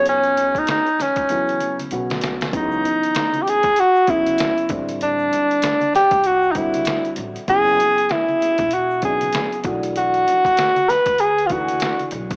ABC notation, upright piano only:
X:1
M:4/4
L:1/8
Q:"Swing 16ths" 1/4=97
K:C#m
V:1 name="Upright piano"
[C,F,B,D]2 z2 [C,F,B,E]2 [C,F,B,F]2 | [C,E,F,B,]3 z2 [C,F,B,C]2 [=D,=G,=CE]- | [=D,=G,=CE]2 z3 [D,G,CF]3 | [C,F,B,E]3 z2 [C,F,B,=D]2 [E,A,DF]- |
[E,A,=DF]2 z3 [E,A,DF]3 |]